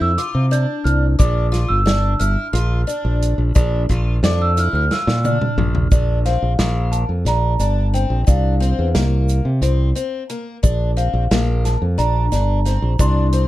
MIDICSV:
0, 0, Header, 1, 5, 480
1, 0, Start_track
1, 0, Tempo, 674157
1, 852, Time_signature, 7, 3, 24, 8
1, 9596, End_track
2, 0, Start_track
2, 0, Title_t, "Celesta"
2, 0, Program_c, 0, 8
2, 12, Note_on_c, 0, 88, 98
2, 127, Note_on_c, 0, 86, 87
2, 135, Note_off_c, 0, 88, 0
2, 370, Note_on_c, 0, 91, 83
2, 376, Note_off_c, 0, 86, 0
2, 601, Note_on_c, 0, 89, 90
2, 618, Note_off_c, 0, 91, 0
2, 712, Note_off_c, 0, 89, 0
2, 845, Note_on_c, 0, 86, 85
2, 1200, Note_on_c, 0, 88, 101
2, 1220, Note_off_c, 0, 86, 0
2, 1563, Note_on_c, 0, 89, 85
2, 1577, Note_off_c, 0, 88, 0
2, 2259, Note_off_c, 0, 89, 0
2, 3028, Note_on_c, 0, 86, 91
2, 3144, Note_off_c, 0, 86, 0
2, 3144, Note_on_c, 0, 88, 96
2, 3262, Note_off_c, 0, 88, 0
2, 3269, Note_on_c, 0, 89, 91
2, 3375, Note_off_c, 0, 89, 0
2, 3384, Note_on_c, 0, 89, 116
2, 3499, Note_on_c, 0, 88, 97
2, 3502, Note_off_c, 0, 89, 0
2, 3740, Note_on_c, 0, 89, 72
2, 3743, Note_off_c, 0, 88, 0
2, 4188, Note_off_c, 0, 89, 0
2, 4455, Note_on_c, 0, 77, 80
2, 4925, Note_on_c, 0, 81, 78
2, 4949, Note_off_c, 0, 77, 0
2, 5035, Note_off_c, 0, 81, 0
2, 5180, Note_on_c, 0, 82, 92
2, 5420, Note_on_c, 0, 81, 74
2, 5424, Note_off_c, 0, 82, 0
2, 5641, Note_off_c, 0, 81, 0
2, 5655, Note_on_c, 0, 79, 74
2, 5901, Note_on_c, 0, 77, 69
2, 5902, Note_off_c, 0, 79, 0
2, 6830, Note_off_c, 0, 77, 0
2, 7812, Note_on_c, 0, 77, 73
2, 8265, Note_off_c, 0, 77, 0
2, 8297, Note_on_c, 0, 81, 75
2, 8405, Note_off_c, 0, 81, 0
2, 8532, Note_on_c, 0, 82, 88
2, 9263, Note_on_c, 0, 84, 93
2, 9275, Note_off_c, 0, 82, 0
2, 9596, Note_off_c, 0, 84, 0
2, 9596, End_track
3, 0, Start_track
3, 0, Title_t, "Twelve-string acoustic guitar"
3, 0, Program_c, 1, 25
3, 0, Note_on_c, 1, 64, 75
3, 80, Note_off_c, 1, 64, 0
3, 128, Note_on_c, 1, 65, 80
3, 321, Note_off_c, 1, 65, 0
3, 365, Note_on_c, 1, 62, 78
3, 750, Note_off_c, 1, 62, 0
3, 846, Note_on_c, 1, 62, 83
3, 1039, Note_off_c, 1, 62, 0
3, 1081, Note_on_c, 1, 65, 84
3, 1277, Note_off_c, 1, 65, 0
3, 1321, Note_on_c, 1, 62, 82
3, 1517, Note_off_c, 1, 62, 0
3, 1564, Note_on_c, 1, 64, 80
3, 1758, Note_off_c, 1, 64, 0
3, 1803, Note_on_c, 1, 65, 85
3, 1998, Note_off_c, 1, 65, 0
3, 2045, Note_on_c, 1, 62, 74
3, 2430, Note_off_c, 1, 62, 0
3, 2529, Note_on_c, 1, 62, 84
3, 2722, Note_off_c, 1, 62, 0
3, 2771, Note_on_c, 1, 65, 77
3, 2963, Note_off_c, 1, 65, 0
3, 3016, Note_on_c, 1, 62, 87
3, 3206, Note_off_c, 1, 62, 0
3, 3255, Note_on_c, 1, 64, 74
3, 3446, Note_off_c, 1, 64, 0
3, 3496, Note_on_c, 1, 65, 81
3, 3686, Note_off_c, 1, 65, 0
3, 3738, Note_on_c, 1, 62, 78
3, 4119, Note_off_c, 1, 62, 0
3, 4212, Note_on_c, 1, 62, 80
3, 4404, Note_off_c, 1, 62, 0
3, 4454, Note_on_c, 1, 60, 62
3, 4645, Note_off_c, 1, 60, 0
3, 4691, Note_on_c, 1, 58, 74
3, 5075, Note_off_c, 1, 58, 0
3, 5170, Note_on_c, 1, 62, 70
3, 5363, Note_off_c, 1, 62, 0
3, 5408, Note_on_c, 1, 62, 63
3, 5602, Note_off_c, 1, 62, 0
3, 5651, Note_on_c, 1, 60, 66
3, 5843, Note_off_c, 1, 60, 0
3, 5887, Note_on_c, 1, 62, 82
3, 6081, Note_off_c, 1, 62, 0
3, 6126, Note_on_c, 1, 60, 74
3, 6321, Note_off_c, 1, 60, 0
3, 6370, Note_on_c, 1, 58, 83
3, 6755, Note_off_c, 1, 58, 0
3, 6850, Note_on_c, 1, 60, 67
3, 7043, Note_off_c, 1, 60, 0
3, 7088, Note_on_c, 1, 60, 70
3, 7282, Note_off_c, 1, 60, 0
3, 7331, Note_on_c, 1, 58, 74
3, 7524, Note_off_c, 1, 58, 0
3, 7568, Note_on_c, 1, 62, 80
3, 7762, Note_off_c, 1, 62, 0
3, 7808, Note_on_c, 1, 60, 69
3, 8002, Note_off_c, 1, 60, 0
3, 8053, Note_on_c, 1, 58, 77
3, 8436, Note_off_c, 1, 58, 0
3, 8528, Note_on_c, 1, 62, 73
3, 8722, Note_off_c, 1, 62, 0
3, 8770, Note_on_c, 1, 62, 70
3, 8963, Note_off_c, 1, 62, 0
3, 9009, Note_on_c, 1, 60, 69
3, 9203, Note_off_c, 1, 60, 0
3, 9251, Note_on_c, 1, 62, 82
3, 9444, Note_off_c, 1, 62, 0
3, 9492, Note_on_c, 1, 60, 72
3, 9596, Note_off_c, 1, 60, 0
3, 9596, End_track
4, 0, Start_track
4, 0, Title_t, "Fingered electric bass"
4, 0, Program_c, 2, 33
4, 6, Note_on_c, 2, 41, 68
4, 113, Note_off_c, 2, 41, 0
4, 247, Note_on_c, 2, 48, 85
4, 459, Note_off_c, 2, 48, 0
4, 607, Note_on_c, 2, 36, 90
4, 819, Note_off_c, 2, 36, 0
4, 851, Note_on_c, 2, 34, 94
4, 1167, Note_off_c, 2, 34, 0
4, 1211, Note_on_c, 2, 31, 77
4, 1527, Note_off_c, 2, 31, 0
4, 1569, Note_on_c, 2, 31, 91
4, 1675, Note_off_c, 2, 31, 0
4, 1805, Note_on_c, 2, 34, 96
4, 2018, Note_off_c, 2, 34, 0
4, 2169, Note_on_c, 2, 34, 87
4, 2381, Note_off_c, 2, 34, 0
4, 2406, Note_on_c, 2, 34, 78
4, 2514, Note_off_c, 2, 34, 0
4, 2533, Note_on_c, 2, 34, 104
4, 2743, Note_off_c, 2, 34, 0
4, 2776, Note_on_c, 2, 34, 92
4, 2985, Note_off_c, 2, 34, 0
4, 3010, Note_on_c, 2, 41, 105
4, 3327, Note_off_c, 2, 41, 0
4, 3369, Note_on_c, 2, 38, 73
4, 3476, Note_off_c, 2, 38, 0
4, 3612, Note_on_c, 2, 46, 94
4, 3823, Note_off_c, 2, 46, 0
4, 3970, Note_on_c, 2, 34, 102
4, 4182, Note_off_c, 2, 34, 0
4, 4211, Note_on_c, 2, 34, 85
4, 4528, Note_off_c, 2, 34, 0
4, 4574, Note_on_c, 2, 34, 75
4, 4679, Note_off_c, 2, 34, 0
4, 4694, Note_on_c, 2, 34, 100
4, 5009, Note_off_c, 2, 34, 0
4, 5047, Note_on_c, 2, 41, 73
4, 5155, Note_off_c, 2, 41, 0
4, 5163, Note_on_c, 2, 34, 74
4, 5378, Note_off_c, 2, 34, 0
4, 5407, Note_on_c, 2, 31, 80
4, 5726, Note_off_c, 2, 31, 0
4, 5768, Note_on_c, 2, 34, 78
4, 5876, Note_off_c, 2, 34, 0
4, 5892, Note_on_c, 2, 36, 85
4, 6209, Note_off_c, 2, 36, 0
4, 6256, Note_on_c, 2, 40, 80
4, 6361, Note_off_c, 2, 40, 0
4, 6375, Note_on_c, 2, 36, 90
4, 6690, Note_off_c, 2, 36, 0
4, 6729, Note_on_c, 2, 48, 74
4, 6836, Note_off_c, 2, 48, 0
4, 6846, Note_on_c, 2, 36, 85
4, 7060, Note_off_c, 2, 36, 0
4, 7573, Note_on_c, 2, 34, 84
4, 7890, Note_off_c, 2, 34, 0
4, 7928, Note_on_c, 2, 34, 82
4, 8036, Note_off_c, 2, 34, 0
4, 8053, Note_on_c, 2, 34, 89
4, 8369, Note_off_c, 2, 34, 0
4, 8414, Note_on_c, 2, 41, 74
4, 8519, Note_off_c, 2, 41, 0
4, 8533, Note_on_c, 2, 34, 76
4, 8744, Note_off_c, 2, 34, 0
4, 8771, Note_on_c, 2, 31, 81
4, 9089, Note_off_c, 2, 31, 0
4, 9130, Note_on_c, 2, 34, 80
4, 9237, Note_off_c, 2, 34, 0
4, 9254, Note_on_c, 2, 36, 92
4, 9570, Note_off_c, 2, 36, 0
4, 9596, End_track
5, 0, Start_track
5, 0, Title_t, "Drums"
5, 130, Note_on_c, 9, 42, 83
5, 201, Note_off_c, 9, 42, 0
5, 373, Note_on_c, 9, 42, 54
5, 375, Note_on_c, 9, 82, 42
5, 445, Note_off_c, 9, 42, 0
5, 446, Note_off_c, 9, 82, 0
5, 615, Note_on_c, 9, 42, 55
5, 686, Note_off_c, 9, 42, 0
5, 852, Note_on_c, 9, 36, 91
5, 854, Note_on_c, 9, 42, 72
5, 854, Note_on_c, 9, 82, 65
5, 923, Note_off_c, 9, 36, 0
5, 925, Note_off_c, 9, 42, 0
5, 925, Note_off_c, 9, 82, 0
5, 1090, Note_on_c, 9, 82, 17
5, 1093, Note_on_c, 9, 38, 36
5, 1093, Note_on_c, 9, 42, 57
5, 1161, Note_off_c, 9, 82, 0
5, 1164, Note_off_c, 9, 38, 0
5, 1164, Note_off_c, 9, 42, 0
5, 1332, Note_on_c, 9, 38, 100
5, 1332, Note_on_c, 9, 42, 78
5, 1333, Note_on_c, 9, 82, 17
5, 1404, Note_off_c, 9, 38, 0
5, 1404, Note_off_c, 9, 42, 0
5, 1404, Note_off_c, 9, 82, 0
5, 1570, Note_on_c, 9, 42, 62
5, 1579, Note_on_c, 9, 82, 49
5, 1642, Note_off_c, 9, 42, 0
5, 1650, Note_off_c, 9, 82, 0
5, 1815, Note_on_c, 9, 42, 84
5, 1886, Note_off_c, 9, 42, 0
5, 2054, Note_on_c, 9, 82, 46
5, 2059, Note_on_c, 9, 42, 61
5, 2125, Note_off_c, 9, 82, 0
5, 2130, Note_off_c, 9, 42, 0
5, 2295, Note_on_c, 9, 42, 60
5, 2367, Note_off_c, 9, 42, 0
5, 2531, Note_on_c, 9, 82, 70
5, 2535, Note_on_c, 9, 36, 106
5, 2535, Note_on_c, 9, 42, 80
5, 2602, Note_off_c, 9, 82, 0
5, 2606, Note_off_c, 9, 36, 0
5, 2607, Note_off_c, 9, 42, 0
5, 2775, Note_on_c, 9, 36, 61
5, 2780, Note_on_c, 9, 42, 59
5, 2782, Note_on_c, 9, 82, 18
5, 2846, Note_off_c, 9, 36, 0
5, 2851, Note_off_c, 9, 42, 0
5, 2853, Note_off_c, 9, 82, 0
5, 3017, Note_on_c, 9, 38, 101
5, 3017, Note_on_c, 9, 42, 81
5, 3088, Note_off_c, 9, 38, 0
5, 3088, Note_off_c, 9, 42, 0
5, 3255, Note_on_c, 9, 82, 42
5, 3258, Note_on_c, 9, 42, 64
5, 3326, Note_off_c, 9, 82, 0
5, 3329, Note_off_c, 9, 42, 0
5, 3498, Note_on_c, 9, 38, 63
5, 3569, Note_off_c, 9, 38, 0
5, 3619, Note_on_c, 9, 38, 69
5, 3690, Note_off_c, 9, 38, 0
5, 3736, Note_on_c, 9, 48, 73
5, 3736, Note_on_c, 9, 82, 44
5, 3807, Note_off_c, 9, 48, 0
5, 3807, Note_off_c, 9, 82, 0
5, 3855, Note_on_c, 9, 47, 82
5, 3927, Note_off_c, 9, 47, 0
5, 3975, Note_on_c, 9, 45, 97
5, 4046, Note_off_c, 9, 45, 0
5, 4092, Note_on_c, 9, 43, 88
5, 4163, Note_off_c, 9, 43, 0
5, 4210, Note_on_c, 9, 42, 64
5, 4212, Note_on_c, 9, 82, 59
5, 4213, Note_on_c, 9, 36, 99
5, 4281, Note_off_c, 9, 42, 0
5, 4283, Note_off_c, 9, 82, 0
5, 4284, Note_off_c, 9, 36, 0
5, 4454, Note_on_c, 9, 38, 33
5, 4454, Note_on_c, 9, 42, 55
5, 4526, Note_off_c, 9, 38, 0
5, 4526, Note_off_c, 9, 42, 0
5, 4691, Note_on_c, 9, 38, 98
5, 4691, Note_on_c, 9, 42, 72
5, 4693, Note_on_c, 9, 82, 17
5, 4762, Note_off_c, 9, 38, 0
5, 4762, Note_off_c, 9, 42, 0
5, 4764, Note_off_c, 9, 82, 0
5, 4931, Note_on_c, 9, 42, 60
5, 4931, Note_on_c, 9, 82, 41
5, 5002, Note_off_c, 9, 42, 0
5, 5003, Note_off_c, 9, 82, 0
5, 5171, Note_on_c, 9, 38, 36
5, 5171, Note_on_c, 9, 42, 87
5, 5242, Note_off_c, 9, 38, 0
5, 5242, Note_off_c, 9, 42, 0
5, 5410, Note_on_c, 9, 82, 44
5, 5412, Note_on_c, 9, 42, 56
5, 5481, Note_off_c, 9, 82, 0
5, 5483, Note_off_c, 9, 42, 0
5, 5654, Note_on_c, 9, 82, 16
5, 5660, Note_on_c, 9, 42, 61
5, 5725, Note_off_c, 9, 82, 0
5, 5731, Note_off_c, 9, 42, 0
5, 5892, Note_on_c, 9, 82, 59
5, 5894, Note_on_c, 9, 36, 92
5, 5896, Note_on_c, 9, 42, 70
5, 5963, Note_off_c, 9, 82, 0
5, 5965, Note_off_c, 9, 36, 0
5, 5967, Note_off_c, 9, 42, 0
5, 6138, Note_on_c, 9, 42, 56
5, 6210, Note_off_c, 9, 42, 0
5, 6371, Note_on_c, 9, 38, 90
5, 6371, Note_on_c, 9, 42, 80
5, 6379, Note_on_c, 9, 82, 18
5, 6442, Note_off_c, 9, 38, 0
5, 6442, Note_off_c, 9, 42, 0
5, 6450, Note_off_c, 9, 82, 0
5, 6612, Note_on_c, 9, 82, 43
5, 6616, Note_on_c, 9, 42, 56
5, 6684, Note_off_c, 9, 82, 0
5, 6688, Note_off_c, 9, 42, 0
5, 6852, Note_on_c, 9, 42, 85
5, 6923, Note_off_c, 9, 42, 0
5, 7092, Note_on_c, 9, 42, 59
5, 7096, Note_on_c, 9, 82, 46
5, 7164, Note_off_c, 9, 42, 0
5, 7167, Note_off_c, 9, 82, 0
5, 7330, Note_on_c, 9, 42, 54
5, 7339, Note_on_c, 9, 82, 17
5, 7401, Note_off_c, 9, 42, 0
5, 7411, Note_off_c, 9, 82, 0
5, 7572, Note_on_c, 9, 42, 69
5, 7574, Note_on_c, 9, 36, 89
5, 7577, Note_on_c, 9, 82, 67
5, 7643, Note_off_c, 9, 42, 0
5, 7645, Note_off_c, 9, 36, 0
5, 7649, Note_off_c, 9, 82, 0
5, 7816, Note_on_c, 9, 42, 51
5, 7888, Note_off_c, 9, 42, 0
5, 8056, Note_on_c, 9, 38, 102
5, 8056, Note_on_c, 9, 42, 64
5, 8064, Note_on_c, 9, 82, 16
5, 8127, Note_off_c, 9, 38, 0
5, 8127, Note_off_c, 9, 42, 0
5, 8135, Note_off_c, 9, 82, 0
5, 8295, Note_on_c, 9, 38, 31
5, 8295, Note_on_c, 9, 42, 53
5, 8297, Note_on_c, 9, 82, 40
5, 8366, Note_off_c, 9, 38, 0
5, 8366, Note_off_c, 9, 42, 0
5, 8369, Note_off_c, 9, 82, 0
5, 8534, Note_on_c, 9, 42, 77
5, 8605, Note_off_c, 9, 42, 0
5, 8774, Note_on_c, 9, 82, 46
5, 8776, Note_on_c, 9, 38, 29
5, 8776, Note_on_c, 9, 42, 53
5, 8845, Note_off_c, 9, 82, 0
5, 8847, Note_off_c, 9, 38, 0
5, 8847, Note_off_c, 9, 42, 0
5, 9014, Note_on_c, 9, 38, 34
5, 9014, Note_on_c, 9, 42, 55
5, 9017, Note_on_c, 9, 82, 18
5, 9086, Note_off_c, 9, 38, 0
5, 9086, Note_off_c, 9, 42, 0
5, 9088, Note_off_c, 9, 82, 0
5, 9250, Note_on_c, 9, 42, 74
5, 9252, Note_on_c, 9, 36, 91
5, 9255, Note_on_c, 9, 82, 67
5, 9321, Note_off_c, 9, 42, 0
5, 9323, Note_off_c, 9, 36, 0
5, 9326, Note_off_c, 9, 82, 0
5, 9488, Note_on_c, 9, 42, 57
5, 9495, Note_on_c, 9, 82, 18
5, 9559, Note_off_c, 9, 42, 0
5, 9566, Note_off_c, 9, 82, 0
5, 9596, End_track
0, 0, End_of_file